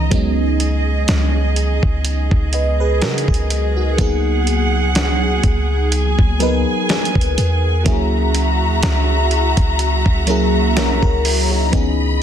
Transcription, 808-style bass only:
0.12 C#2
1.09 C#2
1.83 C#2
2.31 C#2
3.02 C#3
3.28 C#2
3.99 C#2
5.44 C#2
6.19 C#2
7.16 C#2
7.38 E2
7.86 C#2
8.61 D#2
8.83 C#2
9.57 C#2
10.06 C#2
10.77 B1
11.03 C#2
11.73 C#2

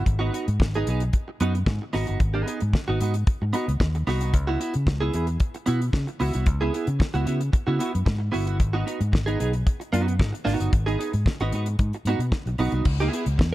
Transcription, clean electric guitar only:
0.04 muted clean electric guitar stroke
0.19 B3 D#4 F#4
0.33 B3 D#4 F#4
0.47 muted clean electric guitar stroke
0.60 muted clean electric guitar stroke
0.75 B3 D#4 G#4
0.88 B3 D#4 G#4
1.03 muted clean electric guitar stroke
1.28 muted clean electric guitar stroke
1.41 B3 D#4 F#4
1.54 muted clean electric guitar stroke
1.68 muted clean electric guitar stroke
1.82 muted clean electric guitar stroke
1.93 B3 D#4 F#4
2.07 B3 D#4 F#4
2.20 muted clean electric guitar stroke
2.34 B3 D#4 G#4
2.46 B3 D#4 G#4
2.61 muted clean electric guitar stroke
2.74 muted clean electric guitar stroke
2.88 B3 D#4 F#4
3.00 B3 D#4 F#4
3.15 muted clean electric guitar stroke
3.42 muted clean electric guitar stroke
3.53 B3 D#4 F#4
3.67 muted clean electric guitar stroke
3.80 muted clean electric guitar stroke
3.95 muted clean electric guitar stroke
4.07 B3 D#4 F#4
4.21 B3 D#4 F#4
4.34 muted clean electric guitar stroke
4.47 B3 E4 F#4
4.60 B3 E4 F#4
4.74 muted clean electric guitar stroke
4.87 muted clean electric guitar stroke
5.00 B3 E4 G#4
5.13 B3 E4 G#4
5.55 muted clean electric guitar stroke
5.66 B3 E4 F#4
5.81 muted clean electric guitar stroke
5.93 muted clean electric guitar stroke
6.07 muted clean electric guitar stroke
6.20 B3 E4 F#4
6.34 B3 E4 F#4
6.46 muted clean electric guitar stroke
6.61 B3 E4 G#4
6.73 B3 E4 G#4
6.88 muted clean electric guitar stroke
6.99 muted clean electric guitar stroke
7.14 B3 E4 F#4
7.25 B3 E4 F#4
7.41 muted clean electric guitar stroke
7.53 muted clean electric guitar stroke
7.67 B3 E4 F#4
7.79 B3 E4 F#4
7.93 muted clean electric guitar stroke
8.05 muted clean electric guitar stroke
8.19 muted clean electric guitar stroke
8.32 B3 E4 F#4
8.47 B3 E4 F#4
8.59 muted clean electric guitar stroke
8.73 B3 D#4 F#4
8.86 B3 D#4 F#4
9.01 muted clean electric guitar stroke
9.12 muted clean electric guitar stroke
9.26 B3 D#4 G#4
9.39 B3 D#4 G#4
9.53 muted clean electric guitar stroke
9.80 muted clean electric guitar stroke
9.93 B3 D#4 F#4
10.06 muted clean electric guitar stroke
10.20 muted clean electric guitar stroke
10.33 muted clean electric guitar stroke
10.45 B3 D#4 F#4
10.59 B3 D#4 F#4
10.73 muted clean electric guitar stroke
10.86 B3 D#4 G#4
10.98 B3 D#4 G#4
11.13 muted clean electric guitar stroke
11.26 muted clean electric guitar stroke
11.41 B3 D#4 F#4
11.53 B3 D#4 F#4
11.68 muted clean electric guitar stroke
11.95 muted clean electric guitar stroke
12.07 B3 D#4 F#4
12.21 muted clean electric guitar stroke
12.33 muted clean electric guitar stroke
12.47 muted clean electric guitar stroke
12.59 B3 D#4 F#4
12.74 B3 D#4 F#4
12.86 muted clean electric guitar stroke
13.00 B3 E4 G#4
13.12 B3 E4 G#4
13.25 muted clean electric guitar stroke
13.38 muted clean electric guitar stroke

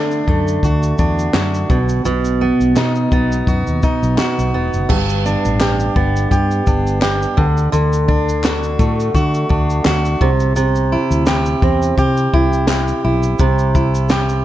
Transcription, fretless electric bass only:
Already playing: D3
0.27 F#2
0.63 D2
0.99 E2
1.34 F#2
1.70 B1
2.05 B1
2.60 B1
2.76 B2
3.12 B1
3.47 F#2
3.67 D#2
4.03 B1
4.38 B1
4.54 E1
4.74 F#1
4.90 G1
5.45 A1
5.96 G1
6.31 G2
6.67 G1
7.38 D2
7.73 D2
8.79 A2
9.14 D3
9.50 D2
9.86 D2
10.21 C2
11.11 D2
11.62 E2
11.97 C3
12.33 C2
13.04 B1
13.39 C2

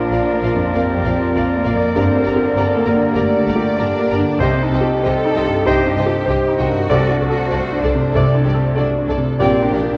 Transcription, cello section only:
Already playing: D4
0.75 C4
1.66 A#3
1.96 C4
2.87 A#3
3.16 A3
3.81 D4
4.41 C4
5.06 A4
5.67 G4
6.60 F#4
7.83 D4
8.15 C4
8.77 D4
9.40 C4
9.73 D4

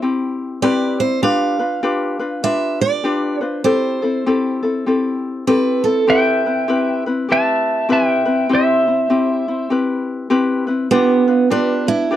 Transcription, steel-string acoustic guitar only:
Already playing: C5
0.62 D5
1.00 C5
1.23 F5
2.44 E5
2.81 D5
3.43 C5
3.64 C5
5.47 B4
5.84 A4
10.91 B3
11.51 D4
11.88 E4

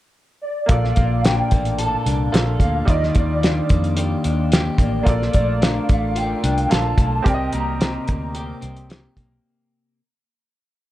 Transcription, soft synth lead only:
0.42 D5
0.68 F5
1.24 G5
1.79 A5
2.61 F5
2.89 D#5
3.16 D5
4.80 D5
5.62 F5
6.17 G5
6.71 A5
7.27 G5
7.53 A#5

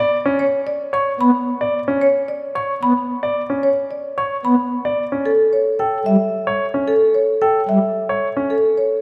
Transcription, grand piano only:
0.00 D5
0.26 C#4
0.93 C#5
1.61 D5
1.88 C#4
2.55 C#5
3.23 D5
3.50 C#4
4.18 C#5
4.85 D5
5.12 C#4
5.79 A4
6.47 C#5
6.74 C#4
7.42 A4
8.09 C#5
8.37 C#4

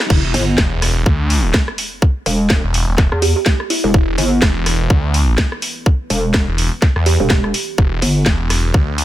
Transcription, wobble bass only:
0.34 G1
2.26 E1
3.12 E2
3.84 E1
4.18 G1
6.10 E1
7.20 E1
8.02 G1

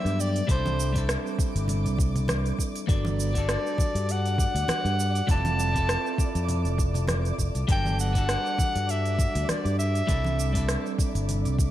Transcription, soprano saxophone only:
Already playing: E5
0.21 D5
0.51 C5
2.91 D5
4.12 F#5
5.31 A5
7.72 G5
8.01 F#5
8.91 E5
9.50 D5
9.79 E5

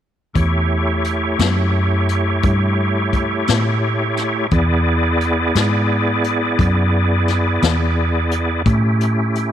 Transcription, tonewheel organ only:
0.34 A3 E4 G4 C#5
4.51 B3 E4 G#4 D5
8.66 A3 C#4 E4 G4

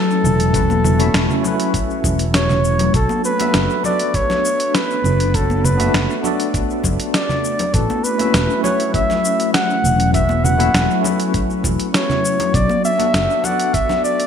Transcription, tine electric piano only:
Already playing: A3 C#4 E4 F#4 B4 E5
0.53 A3 C#4 E4 F#4 B4
0.98 A3 C#4 E4 F#4 E5
1.41 A3 C#4 E4
1.46 F#4 B4
2.93 B3 D4 F#4 A4 C#5
3.38 B3 D4 F#4 A4 E5
3.81 B3 D4 F#4
3.86 A4 B4
5.33 B3 D4 F#4 A4 C#5
5.78 B3 D4 F#4 A4 E5
6.21 B3 D4 F#4
6.26 A4 D5
7.73 A3 C#4 E4 F#4 B4
8.18 A3 C#4 E4 F#4 E5
8.61 A3 C#4 E4
8.66 F#4 B4
10.13 A3 C#4 E4 F#4 B4
10.58 A3 C#4 E4 F#4 E5
11.01 A3 C#4 E4
11.06 F#4 B4
12.52 B3 D4 F#4 A4 D5
12.97 B3 D4 F#4 A4 E5
13.41 B3 D4 F#4
13.45 A4 D5

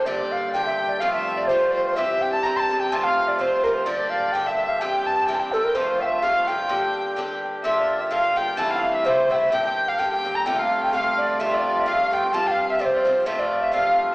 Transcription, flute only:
0.06 D5 E5
0.32 F5
0.53 G5
0.66 E5
0.89 D5
1.00 F5
1.13 E5
1.37 D5
1.48 C5
1.74 C5
1.85 C5
1.96 E5
2.22 G5
2.33 A5
2.43 A#5
2.56 A5 C6
2.80 G5
2.90 A5
3.04 F5
3.28 D5
3.38 C5 D5
3.64 A#4
3.75 C5
3.85 D5
4.10 F5
4.32 G5
4.45 G5
4.49 E5
4.69 F5
4.80 G5 A5
5.05 A5
5.27 G5
5.35 A5
5.40 G5
5.52 A4
5.64 A#4
5.75 C5
6.01 E5 G5
6.22 F5
6.47 G5
7.65 E5
7.78 D5
8.02 E5
8.12 F5
8.38 G5
8.59 A5
8.71 G5
8.76 F5
8.94 E5
9.05 C5
9.31 G5
9.36 E5
9.53 G5
9.65 G5
9.88 F5
9.99 G5
10.12 G5
10.35 A#5
10.46 G5
10.58 G5
10.62 F5
10.83 G5
10.92 F5 G5
11.17 D5
11.39 E5
11.53 E5
11.57 D5
11.77 E5
11.88 F5
12.14 G5
12.34 A5
12.48 F5 G5
12.70 E5
12.81 D5
12.85 C5
13.26 E5
13.39 D5
13.62 E5
13.73 F5

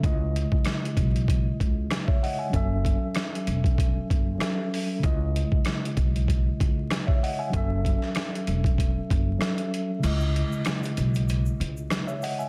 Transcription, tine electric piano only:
0.00 C#3 G#3 E4
0.06 D#5
2.07 C#5 E5
2.23 D#5 F#5
2.39 E5 G#5
2.49 F#3 C#4
2.54 A4 E5
4.38 F#3 C#4 A4 E5
4.99 C#3 G#3
5.03 E4 D#5
7.07 C#5 E5
7.23 D#5 F#5
7.39 E5 G#5
7.50 F#3 C#4
7.54 A4 E5
9.38 F#3 C#4 A4 E5
9.99 C#3 G#3
10.03 E4 D#5
12.07 C#5 E5
12.23 D#5 F#5
12.39 E5 G#5

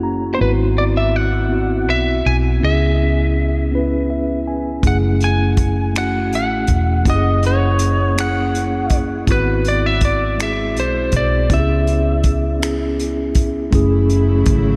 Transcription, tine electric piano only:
Already playing: A#3 C#4 E4 F#4 G#4 F#5
0.03 A#5
0.38 B3 C4 E4 F#4
1.49 B3 C4 E4
1.53 F#4
2.60 B3 C#4 E4 G#4
3.71 B3 C#4 E4
3.75 B4
4.10 E5
4.48 G#5
4.82 A3 C#4 E4 G#4
5.93 A3 C#4 E4
5.97 F#4
7.04 A#3 C#4 E4
7.08 G4
7.14 G#4
8.15 A#3 C#4 E4 G#4
9.26 B3 C4 E4
9.30 F#4
10.38 G#3 C4 E4 G#4
11.48 B3 C#4 E4
11.53 G4
11.59 G#4
12.60 B3 C#4 E4 G#4
13.71 A3 C#4 E4
13.75 G#4

